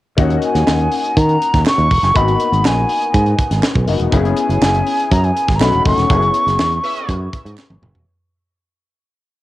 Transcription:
0.17 D#2 A#3 C#4 D#4 F#4, kick, closed hi-hat
0.30 closed hi-hat
0.42 G#5, closed hi-hat
0.55 D#2, snare, closed hi-hat
0.67 D#2, snare, clap
0.79 closed hi-hat
0.92 open hi-hat
1.04 closed hi-hat
1.17 D#3 A#5, kick, closed hi-hat
1.29 closed hi-hat
1.42 closed hi-hat
1.54 D#2, kick, snare, closed hi-hat
1.66 C#6, snare, clap
1.78 D#2, closed hi-hat
1.91 E1, kick, open hi-hat
2.03 F#1, snare, closed hi-hat
2.14 G#1 A#3 B3 D#4 F#4 B5, kick, closed hi-hat
2.28 closed hi-hat
2.40 closed hi-hat
2.52 G#1, closed hi-hat
2.65 A#1 G#5, snare, clap
2.89 open hi-hat
3.02 closed hi-hat
3.14 G#2, kick, closed hi-hat
3.26 closed hi-hat
3.39 kick, closed hi-hat
3.51 G#1, snare, closed hi-hat
3.63 snare, clap
3.75 B1, kick, closed hi-hat
3.87 F#1 A#3 B3 D#4 F#4, open hi-hat
4.00 E1, closed hi-hat
4.11 F#1 B3 C#4 E4 G#4, kick, closed hi-hat
4.25 closed hi-hat
4.37 G#5, closed hi-hat
4.49 F#1, closed hi-hat
4.61 F#1, snare, clap
4.74 closed hi-hat
4.87 open hi-hat
5.00 closed hi-hat
5.11 F#2 A#5, kick, closed hi-hat
5.24 G#5, closed hi-hat
5.37 closed hi-hat
5.48 G#1, kick, snare, closed hi-hat
5.56 A3 A#5
5.60 B1 C#4 D#4 F#4 B5, snare, clap
5.73 E1, closed hi-hat
5.85 F#1 C#6, kick, open hi-hat
5.97 E1, snare, closed hi-hat
6.08 F#1 A#3 C#4 E4 G#4, kick, closed hi-hat
6.14 B3
6.22 closed hi-hat
6.34 closed hi-hat
6.46 F#1, snare, closed hi-hat
6.59 E2, snare, clap
6.72 closed hi-hat
6.83 C#4 B4 E5, open hi-hat
6.96 closed hi-hat
7.08 F#2, kick, closed hi-hat
7.33 kick, closed hi-hat
7.45 G#2, closed hi-hat
7.57 snare, clap
7.70 G#1, high tom
7.82 F#1, mid tom
7.94 E1, floor tom

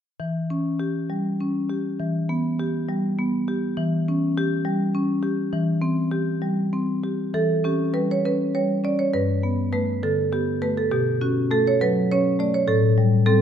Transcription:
0.20 E3
0.50 C#4
0.80 G4
1.10 G3
1.41 C#4
1.70 G4
1.99 E3
2.29 B3
2.59 G4
2.89 G3
3.19 B3
3.48 G4
3.77 E3
4.08 C#4
4.38 G4
4.65 G3
4.95 C#4
5.23 G4
5.53 E3
5.82 C4
6.11 G4
6.42 G3
6.73 C4
7.04 G4
7.34 E3 A4
7.64 C#4 G4
7.94 G3 B4
8.11 C#5
8.25 C#4 B4
8.55 G3 C#5
8.84 C#4 D5
8.99 C#5
9.14 G2 B4
9.43 B3
9.73 A3 B4
10.03 D3 A4
10.32 B3 G4
10.62 A3 B4
10.78 A4
10.91 B2 G4
11.21 C#4 F#4
11.51 A3 A4
11.67 C#5
11.81 F#3 B4
12.12 C#4 C#5
12.39 A3 D5
12.54 C#5
12.68 A2 A4
12.98 G3
13.26 G3 C4 A4

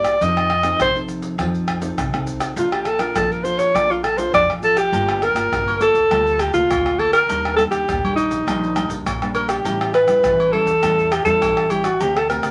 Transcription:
Already playing: G2 A#3 E4 G4 D5
0.04 pandeiro, tamborim, shaker, surdo
0.21 F2 F3 C4 D#4 A4 D#5, pandeiro, shaker, surdo
0.37 pandeiro, tamborim, shaker
0.50 pandeiro, tamborim
0.63 C4 D#4 A4, pandeiro, tamborim, shaker
0.80 C3 F3 C5, pandeiro, tamborim, shaker, surdo
0.95 C4 D#4 A4, pandeiro, shaker
1.08 pandeiro, shaker
1.22 pandeiro, shaker, surdo
1.38 F2 F3 C4 D#4 A4, pandeiro, tamborim, shaker, surdo
1.54 pandeiro, shaker, surdo
1.68 pandeiro, tamborim, shaker, surdo
1.81 C4 D#4 A4, pandeiro, shaker, surdo
1.98 C2 C3, pandeiro, tamborim, shaker, surdo
2.13 C2 C4 D#4 A4, pandeiro, tamborim, shaker
2.27 pandeiro, shaker
2.40 pandeiro, tamborim, shaker, surdo
2.56 A#1 A#3 D4 F4 A4, pandeiro, shaker, surdo
2.72 G4, pandeiro, tamborim, shaker
2.85 A4, pandeiro, tamborim, shaker
2.99 D4 F4 A4 A#4, pandeiro, tamborim, shaker
3.15 A#2 F3 A4, pandeiro, tamborim, shaker, surdo
3.32 A#4, pandeiro, shaker
3.43 D4 F4 A4 C5, pandeiro, shaker
3.58 C#5, pandeiro, shaker, surdo
3.75 A#1 A#3 D4 F4 A4 D5, pandeiro, tamborim, shaker, surdo
3.91 F4, pandeiro, shaker, surdo
4.03 A4, pandeiro, tamborim, shaker, surdo
4.17 D4 F4 A4 C5, pandeiro, shaker, surdo
4.33 F2 F3 D5, pandeiro, tamborim, shaker, surdo
4.49 A1, pandeiro, tamborim, shaker
4.62 D4 F4 A4, pandeiro, shaker
4.77 G4, pandeiro, tamborim, shaker, surdo
4.92 G1 G3 A#3 F4 A4, pandeiro, low agogo, shaker, surdo
5.09 pandeiro, tamborim, shaker
5.22 A#4, pandeiro, tamborim, shaker
5.34 G1 A#3 F4, pandeiro, tamborim, shaker
5.51 G1 D3, pandeiro, tamborim, shaker, surdo
5.68 pandeiro, high agogo, shaker
5.80 A#3 F4 A4, pandeiro, high agogo, shaker
5.94 D2, pandeiro, shaker, surdo
6.10 D2 G3 A#3 F4 A4, pandeiro, tamborim, low agogo, shaker, surdo
6.27 pandeiro, shaker, surdo
6.39 G4, pandeiro, tamborim, low agogo, shaker
6.53 D2 A#3 F4 A4, pandeiro, shaker, surdo
6.70 D2 D3, pandeiro, tamborim, high agogo, shaker, surdo
6.86 pandeiro, tamborim, shaker
6.98 A#3 F4 A4, pandeiro, high agogo
7.13 A#4, pandeiro, tamborim, shaker, surdo
7.29 D#2 D#3 G3 A#3 D4, pandeiro, low agogo, shaker, surdo
7.45 pandeiro, tamborim, shaker
7.56 G3 A#3 D4 A4, pandeiro, tamborim, shaker
7.71 D#2 G4, pandeiro, tamborim, shaker
7.88 D#2 A#2, pandeiro, tamborim, shaker, surdo
8.04 G3 A#3 D4, pandeiro, high agogo, shaker
8.16 D#4, pandeiro, high agogo, shaker
8.30 A#1, pandeiro, shaker, surdo
8.46 A#1 D#3 G3 A#3 D4, pandeiro, tamborim, low agogo, shaker, surdo
8.63 pandeiro, shaker, surdo
8.76 G3 A#3 D4, pandeiro, tamborim, low agogo, shaker, surdo
8.89 A#1, pandeiro, shaker, surdo
9.06 A#1 A#2, pandeiro, tamborim, high agogo, shaker, surdo
9.22 G3 A#3 D4, pandeiro, tamborim, shaker
9.35 A#4, pandeiro, high agogo, shaker
9.49 G4, pandeiro, tamborim, shaker, surdo
9.64 A1 A2 G3 C#4 E4, pandeiro, low agogo, shaker, surdo
9.81 pandeiro, tamborim, shaker
9.94 B4, pandeiro, tamborim, shaker
10.07 A1 G3 C#4 E4, pandeiro, tamborim, shaker
10.23 A1 E3, pandeiro, tamborim, shaker, surdo
10.40 pandeiro, high agogo, shaker
10.53 G3 C#4 E4 A4, pandeiro, high agogo
10.65 E2, pandeiro, shaker, surdo
10.82 E2 A2 G3 C#4 E4, pandeiro, tamborim, low agogo, shaker, surdo
10.99 pandeiro, shaker, surdo
11.12 G4, pandeiro, tamborim, low agogo, shaker
11.25 E2 G3 C#4 E4 A4, pandeiro, shaker, surdo
11.42 A1 E3, pandeiro, tamborim, high agogo, shaker, surdo
11.57 pandeiro, tamborim, shaker
11.70 G3 C#4 E4 G4, pandeiro, high agogo, shaker
11.84 F#4, pandeiro, tamborim, shaker, surdo
12.00 D2 D3 A3 C4 G4, pandeiro, low agogo, shaker, surdo
12.17 A4, pandeiro, tamborim, shaker
12.29 A3 C4 G4 A#4, pandeiro, tamborim, shaker
12.43 D2, pandeiro, tamborim, shaker

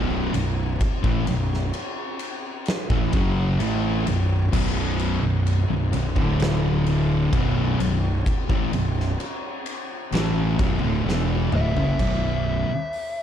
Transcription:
Already playing: B0 B1 F#2 B2
0.33 B0 B1 F#2, ride
0.81 kick, ride
1.03 A1 A2 E3, kick
1.26 B0 B1 F#2, ride
1.54 snare
1.73 ride
2.19 ride
2.66 snare, ride
2.90 A1 A2 E3, kick
3.12 F#1 F#2 C#3 F#3, kick, ride
3.59 A1 A2 E3 A3, ride
4.07 B0 B1 F#2, ride
4.52 B0 B1 F#2 B2, kick, crash
4.99 ride
5.23 B0 B1 F#2
5.47 ride
5.69 B0 B1 F#2
5.93 B0 B1 F#2, ride
6.16 D1 D2 A2 D3, kick
6.40 snare, ride
6.86 ride
7.32 B0 B1 F#2 B2, kick, ride
7.79 B0 B1 F#2, ride
8.26 kick, ride
8.49 A1 A2 E3, kick
8.73 B0 B1 F#2, ride
9.00 snare
9.20 ride
9.66 ride
10.12 A1 A2 E3 A3, snare, ride
10.59 B0 B1 F#2, kick, ride
10.82 D1 D2 A2
11.06 E1 E2 B2 E3, snare
11.52 D1 D2 A2 E5, mid tom
11.76 F#1 F#2 C#3, floor tom
11.99 B0 B1 F#2 B2, kick, crash
12.69 muted fingered electric bass stroke, muted distorted electric guitar stroke
12.93 open hi-hat

